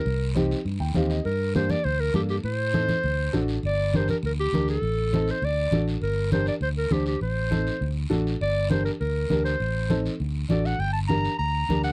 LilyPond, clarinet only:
\new Staff \with { instrumentName = "Clarinet" } { \time 4/4 \key c \dorian \tempo 4 = 201 bes'4 r2. | \key g \minor bes'4 c''8 d''8 c''8 bes'8 g'8 g'8 | c''2.~ c''8 r8 | d''4 c''8 bes'8 bes'8 g'4 a'8~ |
a'4. c''8 d''4. r8 | bes'4 c''8 d''8 c''8 bes'8 g'8 g'8 | c''2~ c''8 r4. | d''4 c''8 bes'8 bes'4. c''8~ |
c''4. r4. d''8 fis''8 | g''8 a''8 bes''4 bes''4. fis''8 | }